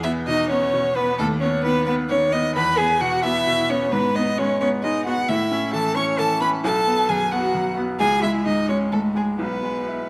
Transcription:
0.00 1.15 E2 medium
0.00 0.11 E5 loud
0.04 0.41 B3 medium
0.04 0.12 E4 medium
0.27 0.64 B2 medium
0.27 0.51 D#4 medium
0.27 0.49 D#5 loud
0.49 0.87 B3 medium
0.49 0.95 C#4 medium
0.49 0.97 C#5 loud
0.73 1.10 B2 medium
0.95 1.20 B3 medium
0.95 1.19 B3 medium
0.95 1.18 B4 loud
1.18 2.52 D#2 medium
1.18 1.40 A3 loud
1.18 1.27 A4 loud
1.41 1.78 B3 medium
1.41 1.49 C#4 medium
1.41 1.63 C#5 medium
1.64 2.01 D#3 medium
1.64 1.87 B3 medium
1.64 1.85 B4 loud
1.86 1.95 B3 medium
1.86 2.24 B3 medium
1.86 1.94 B4 loud
2.09 2.47 D#3 medium
2.09 2.19 C#4 medium
2.09 2.34 C#5 loud
2.32 2.56 B3 medium
2.32 2.41 D#4 medium
2.32 2.55 D#5 loud
2.55 3.89 E2 medium
2.55 2.80 B4 loud
2.55 2.79 B5 loud
2.78 3.15 B3 medium
2.78 3.00 G#4 loud
2.78 3.02 G#5 loud
3.01 3.38 B2 medium
3.01 3.25 F#4 loud
3.01 3.23 F#5 loud
3.24 3.61 B3 medium
3.24 3.71 E4 medium
3.24 3.71 E5 loud
3.47 3.84 B2 medium
3.69 3.93 B3 medium
3.69 3.92 C#4 medium
3.69 3.94 C#5 loud
3.92 5.25 G#2 medium
3.92 4.17 B3 medium
3.92 4.17 B4 loud
4.15 4.52 B3 medium
4.15 4.37 D#4 medium
4.15 4.40 D#5 loud
4.38 4.75 G#3 medium
4.38 4.60 C#4 medium
4.38 4.60 C#5 loud
4.60 4.97 B3 medium
4.60 4.68 C#4 loud
4.60 4.69 C#5 loud
4.83 5.20 G#3 medium
4.83 5.05 D#4 medium
4.83 5.05 D#5 medium
5.05 5.29 B3 medium
5.05 5.14 F#4 loud
5.05 5.30 F#5 loud
5.28 6.60 A2 medium
5.28 5.75 E4 medium
5.28 5.73 E5 loud
5.51 5.87 C#4 medium
5.73 6.10 E3 medium
5.73 5.97 A4 loud
5.73 5.96 A5 loud
5.96 6.33 C#4 medium
5.96 6.21 C#5 loud
5.96 6.05 C#6 loud
6.19 6.55 E3 medium
6.19 6.41 A4 loud
6.19 6.41 A5 loud
6.41 6.64 C#4 medium
6.41 6.49 B4 loud
6.41 6.49 B5 loud
6.64 7.96 B1 medium
6.64 7.12 A4 loud
6.64 7.11 A5 loud
6.87 7.23 B3 medium
7.09 7.46 F#2 medium
7.09 7.32 G#4 medium
7.09 7.33 G#5 loud
7.32 7.68 B3 medium
7.32 7.76 F#4 medium
7.32 7.77 F#5 loud
7.54 7.91 F#2 medium
7.77 8.00 B3 medium
7.99 9.36 C#2 medium
7.99 8.23 G#4 loud
7.99 8.21 G#5 loud
8.22 8.60 G#3 medium
8.22 8.47 E4 medium
8.22 8.31 E5 medium
8.45 8.83 G#2 medium
8.45 8.71 D#4 medium
8.45 8.68 D#5 medium
8.69 9.06 G#3 medium
8.69 8.91 C#4 medium
8.69 8.77 C#5 medium
8.92 9.30 G#2 soft
8.92 9.18 A3 medium
8.92 9.00 A4 medium
9.15 9.39 G#3 soft
9.15 9.38 G#3 medium
9.15 9.24 G#4 medium
9.39 10.08 B1 medium
9.39 10.09 B3 medium
9.39 10.09 B4 medium
9.63 10.01 G#3 soft
9.87 10.08 E4 soft

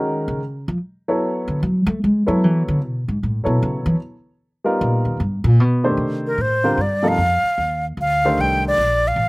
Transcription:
0.00 0.26 D#3 medium
0.00 0.39 D#3 medium
0.00 0.39 G#3 medium
0.00 0.39 C#4 medium
0.00 0.40 F#4 medium
0.00 0.40 A#4 medium
0.28 0.65 C#3 medium
0.68 0.77 F3 medium
1.08 1.59 F#3 medium
1.08 1.59 B3 medium
1.08 1.59 E4 medium
1.08 1.60 A4 medium
1.08 1.59 C#5 medium
1.48 1.61 D3 medium
1.63 1.86 F#3 loud
1.87 2.01 A3 loud
2.04 2.28 G#3 medium
2.27 2.78 F#3 medium
2.27 2.44 F#3 medium
2.27 2.78 B3 medium
2.27 2.78 E4 medium
2.27 2.78 A4 medium
2.27 2.78 C#5 medium
2.44 2.67 E3 medium
2.68 2.84 D3 medium
2.84 3.07 B2 medium
3.08 3.21 G#2 medium
3.23 3.46 A2 medium
3.44 3.60 B2 medium
3.44 3.96 F#3 medium
3.44 3.96 B3 medium
3.44 3.96 E4 soft
3.44 3.96 A4 medium
3.44 3.97 C#5 medium
3.63 3.85 C#3 medium
3.86 3.94 E3 loud
4.64 5.16 G3 medium
4.64 5.16 B3 medium
4.64 5.16 D#4 medium
4.64 5.16 F4 medium
4.64 5.17 A#4 medium
4.81 5.04 A#2 loud
5.05 5.19 D#2 medium
5.20 5.44 G2 medium
5.44 5.60 A#2 loud
5.60 5.92 B2 loud
5.84 6.35 D#3 medium
5.84 6.36 A3 medium
5.84 6.35 D4 medium
5.84 6.36 G4 medium
5.84 6.36 C5 medium
5.97 6.37 C3 medium
6.27 6.43 A#4 medium
6.38 6.77 A2 medium
6.38 6.83 C5 medium
6.64 6.77 D3 medium
6.64 6.77 G3 medium
6.64 6.77 C4 medium
6.64 6.77 F4 medium
6.64 6.77 A#4 medium
6.77 7.17 G2 medium
6.77 7.10 D5 medium
7.02 7.16 C3 medium
7.02 7.16 F3 medium
7.02 7.17 A#3 medium
7.02 7.17 D#4 medium
7.02 7.17 A4 medium
7.08 7.86 F5 medium
7.18 7.42 F2 medium
7.44 muted upright bass stroke soft
7.58 7.96 D#2 medium
7.97 8.36 D2 medium
7.97 8.42 F5 medium
8.25 8.76 D#3 medium
8.25 8.76 A3 medium
8.25 8.76 D4 medium
8.25 8.76 G4 medium
8.25 8.76 C5 medium
8.38 8.77 C2 medium
8.38 8.66 G5 medium
8.68 9.09 D5 medium
8.78 9.15 A#1 medium
9.08 9.29 F5 medium
9.16 9.29 A1 medium

